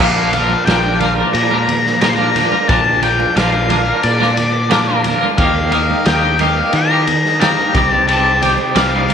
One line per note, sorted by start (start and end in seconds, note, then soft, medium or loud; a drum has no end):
0.00 0.54 A#1 loud
0.00 0.66 A#2 loud
0.00 0.67 F3 medium
0.00 0.33 A#3 medium
0.00 0.34 D4 medium
0.00 0.35 F4 medium
0.00 7.70 A#4 medium
0.00 0.35 A#4 medium
0.00 5.35 D5 medium
0.00 5.35 F5 medium
0.00 0.32 F5 loud
0.00 5.35 D6 medium
0.00 kick loud
0.00 crash loud
0.33 0.67 A#3 medium
0.33 0.68 D4 medium
0.33 0.68 F4 medium
0.33 0.68 A#4 medium
0.33 0.65 F5 medium
0.33 ride medium
0.33 low conga medium
0.50 high conga medium
0.65 1.22 A#1 medium
0.65 2.01 A#2 loud
0.65 2.02 F3 medium
0.65 0.86 A#3 medium
0.65 0.85 D4 loud
0.65 0.84 F4 loud
0.65 0.83 A#4 loud
0.65 1.00 G5 loud
0.65 snare loud
0.65 ride medium
0.84 1.00 A#3 medium
0.84 1.01 D4 medium
0.84 1.02 F4 medium
0.84 1.02 A#4 medium
1.00 1.20 A#3 medium
1.00 1.18 D4 medium
1.00 1.18 F4 medium
1.00 1.18 A#4 medium
1.00 1.10 F5 loud
1.00 ride medium
1.00 high conga medium
1.00 low conga medium
1.18 1.53 A#3 medium
1.18 1.52 D4 medium
1.18 1.51 F4 medium
1.18 1.51 A#4 medium
1.33 2.43 A#2 loud
1.33 2.00 A#5 loud
1.33 ride medium
1.51 1.68 A#3 medium
1.51 1.68 D4 medium
1.51 1.68 F4 medium
1.51 1.69 A#4 medium
1.51 high conga medium
1.67 muted clean electric guitar stroke soft
1.67 ride medium
1.67 low conga medium
1.86 snare soft
2.01 2.52 A#2 loud
2.01 2.53 F3 medium
2.01 2.21 A#3 medium
2.01 2.19 D4 loud
2.01 2.19 F4 loud
2.01 2.18 A#4 loud
2.01 2.09 A#5 loud
2.01 snare loud
2.01 ride loud
2.10 2.15 C6 loud
2.16 2.37 A#4 medium
2.16 2.68 A#5 loud
2.16 high conga medium
2.20 2.35 A#3 medium
2.20 2.35 D4 medium
2.20 2.35 F4 medium
2.35 2.53 A#3 medium
2.35 2.52 D4 medium
2.35 2.51 F4 medium
2.35 2.51 A#4 medium
2.35 snare soft
2.35 ride medium
2.35 low conga medium
2.52 2.69 A#3 medium
2.52 2.68 D4 medium
2.52 2.69 F4 medium
2.52 2.70 A#4 medium
2.52 high conga medium
2.68 3.24 A#1 loud
2.68 3.34 A#2 medium
2.68 3.35 F3 medium
2.68 3.02 A#3 loud
2.68 3.02 D4 medium
2.68 3.02 F4 loud
2.68 3.04 A#4 medium
2.68 3.00 A5 loud
2.68 kick loud
2.68 ride medium
3.03 3.36 A#3 medium
3.03 3.36 D4 medium
3.03 3.36 F4 medium
3.03 3.37 A#4 medium
3.03 3.36 G5 medium
3.03 ride medium
3.03 low conga medium
3.20 high conga medium
3.35 3.91 A#1 loud
3.35 3.87 A#2 medium
3.35 3.87 F3 medium
3.35 3.53 A#3 loud
3.35 3.52 D4 loud
3.35 3.52 F4 loud
3.35 3.51 A#4 loud
3.35 4.06 F5 medium
3.35 snare loud
3.35 ride loud
3.52 3.68 A#3 medium
3.52 3.69 D4 medium
3.52 3.69 F4 medium
3.52 3.70 A#4 medium
3.69 3.87 A#3 medium
3.69 3.86 D4 medium
3.69 3.85 F4 medium
3.69 3.85 A#4 medium
3.69 ride medium
3.69 high conga medium
3.69 low conga medium
3.86 4.21 A#3 medium
3.86 4.20 D4 medium
3.86 4.20 F4 medium
3.86 4.19 A#4 medium
4.03 5.13 A#2 medium
4.03 5.01 D5 medium
4.03 ride loud
4.20 4.36 A#3 medium
4.20 4.36 D4 medium
4.20 4.36 F4 medium
4.20 4.36 A#4 medium
4.20 snare soft
4.20 high conga medium
4.37 muted clean electric guitar stroke soft
4.37 ride medium
4.37 low conga medium
4.70 5.21 A#2 loud
4.70 5.22 F3 medium
4.70 4.89 A#3 loud
4.70 4.88 D4 loud
4.70 4.87 F4 medium
4.70 4.87 A#4 loud
4.70 snare loud
4.70 ride loud
4.88 5.03 A#3 medium
4.88 5.04 D4 medium
4.88 5.04 F4 medium
4.88 5.05 A#4 medium
5.04 5.21 A#3 medium
5.04 5.21 D4 medium
5.04 5.20 F4 medium
5.04 5.20 A#4 medium
5.04 ride medium
5.04 low conga medium
5.21 5.37 A#3 medium
5.21 5.37 D4 medium
5.21 5.37 F4 medium
5.21 5.36 A#4 medium
5.21 high conga medium
5.37 5.93 D#2 loud
5.37 6.03 D#3 medium
5.37 5.70 A#3 medium
5.37 5.71 D#4 medium
5.37 5.72 G4 loud
5.37 5.72 A#4 loud
5.37 7.72 D#5 medium
5.37 5.71 F5 medium
5.37 7.72 G5 medium
5.37 7.72 D#6 medium
5.37 kick loud
5.37 ride loud
5.71 6.04 A#3 medium
5.71 6.05 D#4 medium
5.71 6.06 G4 medium
5.71 6.05 A#4 medium
5.71 6.06 F5 medium
5.71 ride medium
5.71 low conga medium
5.90 high conga medium
6.04 6.61 D#2 medium
6.04 6.56 D#3 medium
6.04 6.38 A#3 medium
6.04 6.24 D#4 medium
6.04 6.23 G4 loud
6.04 6.21 A#4 loud
6.04 6.41 G5 loud
6.04 snare loud
6.04 ride medium
6.22 6.40 D#4 medium
6.22 6.40 G4 medium
6.22 6.40 A#4 medium
6.39 6.90 A#3 medium
6.39 6.58 D#4 medium
6.39 6.56 G4 medium
6.39 6.56 A#4 medium
6.39 6.72 F5 loud
6.39 ride medium
6.39 high conga medium
6.39 low conga medium
6.57 6.91 D#4 medium
6.57 6.90 G4 medium
6.57 6.89 A#4 medium
6.73 7.55 D#3 loud
6.73 7.39 A#5 loud
6.73 ride medium
6.90 7.07 D#4 medium
6.90 7.07 G4 medium
6.90 7.07 A#4 medium
7.07 muted clean electric guitar stroke soft
7.07 ride medium
7.07 low conga medium
7.25 snare soft
7.41 7.72 D#3 medium
7.41 7.73 A#3 medium
7.41 7.58 D#4 loud
7.41 7.58 G4 loud
7.41 7.56 A#4 loud
7.41 7.90 A#5 loud
7.41 snare loud
7.41 ride loud
7.58 7.74 D#4 medium
7.58 7.73 G4 medium
7.58 7.73 A#4 medium
7.58 high conga medium
7.74 8.56 C2 loud
7.74 8.06 C3 loud
7.74 8.07 G3 loud
7.74 7.91 C4 loud
7.74 7.91 D#4 loud
7.74 7.90 G4 loud
7.74 9.14 C5 medium
7.74 7.90 D5 loud
7.74 9.14 G5 medium
7.74 9.14 D6 medium
7.74 kick loud
7.74 ride medium
7.74 low conga medium
7.90 8.07 C4 medium
7.90 8.07 D#4 medium
7.90 8.08 G4 medium
7.90 8.09 D5 medium
7.90 8.07 A5 loud
7.90 high conga medium
8.07 8.73 C3 loud
8.07 8.74 G3 medium
8.07 8.40 C4 loud
8.07 8.41 D#4 loud
8.07 8.42 G4 medium
8.07 8.43 D5 medium
8.07 8.39 A5 loud
8.07 ride medium
8.42 8.74 C4 medium
8.42 8.75 D#4 medium
8.42 8.75 G4 medium
8.42 8.76 D5 medium
8.42 8.51 G5 loud
8.42 ride medium
8.42 low conga medium
8.58 high conga medium
8.74 9.14 C2 medium
8.74 9.14 C3 medium
8.74 9.14 G3 loud
8.74 8.92 C4 loud
8.74 8.91 D#4 medium
8.74 8.91 G4 loud
8.74 8.91 D5 loud
8.74 9.14 F5 loud
8.74 snare loud
8.74 ride loud
8.91 9.06 C4 medium
8.91 9.07 D#4 medium
8.91 9.08 G4 medium
8.91 9.09 D5 medium
9.07 9.14 C4 medium
9.07 9.14 D#4 medium
9.07 9.14 G4 medium
9.07 9.14 D5 medium
9.07 ride medium
9.07 high conga medium
9.07 low conga medium